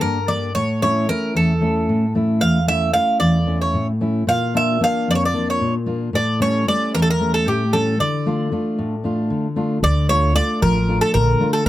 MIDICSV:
0, 0, Header, 1, 4, 480
1, 0, Start_track
1, 0, Key_signature, -1, "minor"
1, 0, Tempo, 531915
1, 497, Time_signature, 7, 3, 24, 8
1, 6016, Tempo, 526316
1, 10596, End_track
2, 0, Start_track
2, 0, Title_t, "Bouzouki"
2, 0, Program_c, 0, 25
2, 10, Note_on_c, 0, 70, 78
2, 255, Note_on_c, 0, 74, 71
2, 261, Note_off_c, 0, 70, 0
2, 480, Note_off_c, 0, 74, 0
2, 495, Note_on_c, 0, 73, 77
2, 732, Note_off_c, 0, 73, 0
2, 743, Note_on_c, 0, 73, 74
2, 964, Note_off_c, 0, 73, 0
2, 984, Note_on_c, 0, 70, 79
2, 1205, Note_off_c, 0, 70, 0
2, 1232, Note_on_c, 0, 69, 62
2, 1911, Note_off_c, 0, 69, 0
2, 2176, Note_on_c, 0, 77, 85
2, 2418, Note_off_c, 0, 77, 0
2, 2422, Note_on_c, 0, 76, 83
2, 2645, Note_off_c, 0, 76, 0
2, 2649, Note_on_c, 0, 77, 89
2, 2878, Note_off_c, 0, 77, 0
2, 2886, Note_on_c, 0, 74, 80
2, 3228, Note_off_c, 0, 74, 0
2, 3262, Note_on_c, 0, 73, 55
2, 3485, Note_off_c, 0, 73, 0
2, 3868, Note_on_c, 0, 77, 82
2, 4112, Note_off_c, 0, 77, 0
2, 4122, Note_on_c, 0, 76, 76
2, 4335, Note_off_c, 0, 76, 0
2, 4366, Note_on_c, 0, 77, 91
2, 4600, Note_off_c, 0, 77, 0
2, 4607, Note_on_c, 0, 74, 84
2, 4646, Note_off_c, 0, 74, 0
2, 4650, Note_on_c, 0, 73, 70
2, 4717, Note_off_c, 0, 73, 0
2, 4741, Note_on_c, 0, 74, 71
2, 4958, Note_off_c, 0, 74, 0
2, 4963, Note_on_c, 0, 73, 64
2, 5174, Note_off_c, 0, 73, 0
2, 5553, Note_on_c, 0, 74, 77
2, 5768, Note_off_c, 0, 74, 0
2, 5792, Note_on_c, 0, 73, 82
2, 6007, Note_off_c, 0, 73, 0
2, 6032, Note_on_c, 0, 74, 84
2, 6267, Note_off_c, 0, 74, 0
2, 6270, Note_on_c, 0, 70, 90
2, 6334, Note_off_c, 0, 70, 0
2, 6341, Note_on_c, 0, 69, 79
2, 6402, Note_off_c, 0, 69, 0
2, 6415, Note_on_c, 0, 70, 77
2, 6627, Note_off_c, 0, 70, 0
2, 6630, Note_on_c, 0, 69, 75
2, 6748, Note_off_c, 0, 69, 0
2, 6758, Note_on_c, 0, 67, 66
2, 6987, Note_on_c, 0, 69, 72
2, 6996, Note_off_c, 0, 67, 0
2, 7231, Note_off_c, 0, 69, 0
2, 7235, Note_on_c, 0, 74, 76
2, 8392, Note_off_c, 0, 74, 0
2, 8907, Note_on_c, 0, 74, 86
2, 9127, Note_off_c, 0, 74, 0
2, 9141, Note_on_c, 0, 73, 90
2, 9377, Note_off_c, 0, 73, 0
2, 9380, Note_on_c, 0, 74, 98
2, 9602, Note_off_c, 0, 74, 0
2, 9625, Note_on_c, 0, 70, 87
2, 9975, Note_off_c, 0, 70, 0
2, 9979, Note_on_c, 0, 69, 85
2, 10091, Note_off_c, 0, 69, 0
2, 10095, Note_on_c, 0, 70, 81
2, 10449, Note_off_c, 0, 70, 0
2, 10452, Note_on_c, 0, 69, 76
2, 10564, Note_off_c, 0, 69, 0
2, 10596, End_track
3, 0, Start_track
3, 0, Title_t, "Steel-string acoustic guitar"
3, 0, Program_c, 1, 25
3, 0, Note_on_c, 1, 58, 45
3, 0, Note_on_c, 1, 62, 39
3, 0, Note_on_c, 1, 67, 44
3, 15, Note_on_c, 1, 43, 58
3, 157, Note_off_c, 1, 58, 0
3, 161, Note_off_c, 1, 62, 0
3, 161, Note_off_c, 1, 67, 0
3, 252, Note_on_c, 1, 58, 48
3, 257, Note_on_c, 1, 62, 43
3, 257, Note_on_c, 1, 67, 50
3, 447, Note_off_c, 1, 58, 0
3, 449, Note_off_c, 1, 62, 0
3, 449, Note_off_c, 1, 67, 0
3, 482, Note_off_c, 1, 43, 0
3, 498, Note_on_c, 1, 45, 60
3, 742, Note_on_c, 1, 57, 51
3, 745, Note_on_c, 1, 61, 43
3, 745, Note_on_c, 1, 64, 55
3, 965, Note_off_c, 1, 45, 0
3, 971, Note_off_c, 1, 57, 0
3, 979, Note_off_c, 1, 61, 0
3, 980, Note_off_c, 1, 64, 0
3, 982, Note_on_c, 1, 57, 46
3, 989, Note_on_c, 1, 61, 46
3, 993, Note_on_c, 1, 64, 47
3, 1217, Note_on_c, 1, 40, 60
3, 1366, Note_off_c, 1, 57, 0
3, 1370, Note_off_c, 1, 61, 0
3, 1371, Note_off_c, 1, 64, 0
3, 1452, Note_on_c, 1, 57, 42
3, 1459, Note_on_c, 1, 61, 36
3, 1465, Note_on_c, 1, 64, 47
3, 1685, Note_off_c, 1, 40, 0
3, 1706, Note_on_c, 1, 45, 55
3, 1840, Note_off_c, 1, 57, 0
3, 1844, Note_off_c, 1, 61, 0
3, 1847, Note_off_c, 1, 64, 0
3, 1941, Note_on_c, 1, 57, 47
3, 1946, Note_on_c, 1, 61, 36
3, 1951, Note_on_c, 1, 64, 44
3, 2169, Note_off_c, 1, 45, 0
3, 2184, Note_on_c, 1, 40, 53
3, 2325, Note_off_c, 1, 57, 0
3, 2329, Note_off_c, 1, 61, 0
3, 2331, Note_off_c, 1, 64, 0
3, 2412, Note_on_c, 1, 57, 49
3, 2417, Note_on_c, 1, 61, 44
3, 2419, Note_on_c, 1, 64, 52
3, 2640, Note_off_c, 1, 57, 0
3, 2647, Note_off_c, 1, 61, 0
3, 2647, Note_off_c, 1, 64, 0
3, 2649, Note_off_c, 1, 40, 0
3, 2651, Note_on_c, 1, 57, 52
3, 2657, Note_on_c, 1, 61, 45
3, 2659, Note_on_c, 1, 64, 51
3, 2891, Note_on_c, 1, 40, 63
3, 3039, Note_off_c, 1, 57, 0
3, 3043, Note_off_c, 1, 61, 0
3, 3044, Note_off_c, 1, 64, 0
3, 3129, Note_on_c, 1, 57, 41
3, 3135, Note_on_c, 1, 61, 36
3, 3137, Note_on_c, 1, 64, 44
3, 3362, Note_off_c, 1, 40, 0
3, 3372, Note_on_c, 1, 45, 53
3, 3518, Note_off_c, 1, 57, 0
3, 3521, Note_off_c, 1, 64, 0
3, 3522, Note_off_c, 1, 61, 0
3, 3616, Note_on_c, 1, 57, 45
3, 3621, Note_on_c, 1, 61, 42
3, 3626, Note_on_c, 1, 64, 47
3, 3810, Note_off_c, 1, 57, 0
3, 3813, Note_off_c, 1, 61, 0
3, 3815, Note_off_c, 1, 64, 0
3, 3842, Note_off_c, 1, 45, 0
3, 3854, Note_on_c, 1, 46, 63
3, 4100, Note_on_c, 1, 58, 48
3, 4103, Note_on_c, 1, 62, 42
3, 4105, Note_on_c, 1, 65, 57
3, 4323, Note_off_c, 1, 46, 0
3, 4328, Note_off_c, 1, 58, 0
3, 4330, Note_off_c, 1, 62, 0
3, 4336, Note_off_c, 1, 65, 0
3, 4337, Note_on_c, 1, 58, 49
3, 4343, Note_on_c, 1, 62, 46
3, 4347, Note_on_c, 1, 65, 54
3, 4583, Note_on_c, 1, 41, 60
3, 4723, Note_off_c, 1, 58, 0
3, 4724, Note_off_c, 1, 62, 0
3, 4728, Note_off_c, 1, 65, 0
3, 4818, Note_on_c, 1, 58, 37
3, 4820, Note_on_c, 1, 62, 41
3, 4829, Note_on_c, 1, 65, 45
3, 5046, Note_off_c, 1, 41, 0
3, 5061, Note_on_c, 1, 46, 56
3, 5202, Note_off_c, 1, 62, 0
3, 5203, Note_off_c, 1, 58, 0
3, 5208, Note_off_c, 1, 65, 0
3, 5290, Note_on_c, 1, 58, 46
3, 5295, Note_on_c, 1, 62, 41
3, 5299, Note_on_c, 1, 65, 51
3, 5484, Note_off_c, 1, 58, 0
3, 5487, Note_off_c, 1, 62, 0
3, 5490, Note_off_c, 1, 65, 0
3, 5524, Note_off_c, 1, 46, 0
3, 5533, Note_on_c, 1, 45, 63
3, 5774, Note_on_c, 1, 55, 52
3, 5781, Note_on_c, 1, 57, 46
3, 5783, Note_on_c, 1, 61, 59
3, 5999, Note_off_c, 1, 45, 0
3, 6012, Note_off_c, 1, 55, 0
3, 6013, Note_off_c, 1, 57, 0
3, 6020, Note_off_c, 1, 61, 0
3, 6022, Note_on_c, 1, 55, 52
3, 6025, Note_on_c, 1, 57, 45
3, 6031, Note_on_c, 1, 61, 59
3, 6267, Note_on_c, 1, 40, 69
3, 6406, Note_off_c, 1, 55, 0
3, 6406, Note_off_c, 1, 57, 0
3, 6410, Note_off_c, 1, 61, 0
3, 6503, Note_on_c, 1, 55, 39
3, 6509, Note_on_c, 1, 57, 36
3, 6513, Note_on_c, 1, 61, 43
3, 6730, Note_off_c, 1, 40, 0
3, 6750, Note_on_c, 1, 45, 58
3, 6886, Note_off_c, 1, 55, 0
3, 6890, Note_off_c, 1, 57, 0
3, 6892, Note_off_c, 1, 61, 0
3, 6987, Note_on_c, 1, 55, 46
3, 6992, Note_on_c, 1, 57, 42
3, 6993, Note_on_c, 1, 61, 50
3, 7177, Note_off_c, 1, 55, 0
3, 7178, Note_off_c, 1, 57, 0
3, 7180, Note_off_c, 1, 61, 0
3, 7212, Note_off_c, 1, 45, 0
3, 7232, Note_on_c, 1, 50, 64
3, 7471, Note_on_c, 1, 57, 50
3, 7476, Note_on_c, 1, 65, 56
3, 7478, Note_on_c, 1, 62, 43
3, 7692, Note_off_c, 1, 57, 0
3, 7693, Note_off_c, 1, 50, 0
3, 7699, Note_off_c, 1, 62, 0
3, 7700, Note_off_c, 1, 65, 0
3, 7703, Note_on_c, 1, 57, 47
3, 7710, Note_on_c, 1, 62, 48
3, 7712, Note_on_c, 1, 65, 49
3, 7948, Note_on_c, 1, 45, 66
3, 8087, Note_off_c, 1, 57, 0
3, 8091, Note_off_c, 1, 62, 0
3, 8091, Note_off_c, 1, 65, 0
3, 8179, Note_on_c, 1, 57, 38
3, 8182, Note_on_c, 1, 62, 42
3, 8189, Note_on_c, 1, 65, 44
3, 8410, Note_off_c, 1, 45, 0
3, 8421, Note_on_c, 1, 50, 52
3, 8563, Note_off_c, 1, 57, 0
3, 8566, Note_off_c, 1, 62, 0
3, 8568, Note_off_c, 1, 65, 0
3, 8656, Note_on_c, 1, 57, 43
3, 8660, Note_on_c, 1, 62, 44
3, 8664, Note_on_c, 1, 65, 51
3, 8850, Note_off_c, 1, 57, 0
3, 8852, Note_off_c, 1, 62, 0
3, 8854, Note_off_c, 1, 65, 0
3, 8886, Note_off_c, 1, 50, 0
3, 8904, Note_on_c, 1, 50, 59
3, 9138, Note_on_c, 1, 57, 52
3, 9147, Note_on_c, 1, 62, 45
3, 9152, Note_on_c, 1, 65, 59
3, 9367, Note_off_c, 1, 50, 0
3, 9367, Note_off_c, 1, 57, 0
3, 9368, Note_off_c, 1, 62, 0
3, 9373, Note_off_c, 1, 65, 0
3, 9377, Note_on_c, 1, 57, 50
3, 9380, Note_on_c, 1, 62, 45
3, 9384, Note_on_c, 1, 65, 57
3, 9621, Note_on_c, 1, 53, 69
3, 9761, Note_off_c, 1, 57, 0
3, 9762, Note_off_c, 1, 62, 0
3, 9765, Note_off_c, 1, 65, 0
3, 9863, Note_on_c, 1, 57, 47
3, 9866, Note_on_c, 1, 62, 41
3, 9869, Note_on_c, 1, 65, 49
3, 10083, Note_off_c, 1, 53, 0
3, 10106, Note_on_c, 1, 50, 64
3, 10243, Note_off_c, 1, 57, 0
3, 10244, Note_off_c, 1, 62, 0
3, 10246, Note_off_c, 1, 65, 0
3, 10332, Note_on_c, 1, 57, 45
3, 10338, Note_on_c, 1, 62, 47
3, 10342, Note_on_c, 1, 65, 49
3, 10524, Note_off_c, 1, 57, 0
3, 10527, Note_off_c, 1, 62, 0
3, 10530, Note_off_c, 1, 65, 0
3, 10564, Note_off_c, 1, 50, 0
3, 10596, End_track
4, 0, Start_track
4, 0, Title_t, "Upright bass"
4, 0, Program_c, 2, 32
4, 8899, Note_on_c, 2, 38, 80
4, 9402, Note_off_c, 2, 38, 0
4, 9628, Note_on_c, 2, 33, 79
4, 9959, Note_off_c, 2, 33, 0
4, 10105, Note_on_c, 2, 34, 80
4, 10269, Note_off_c, 2, 34, 0
4, 10596, End_track
0, 0, End_of_file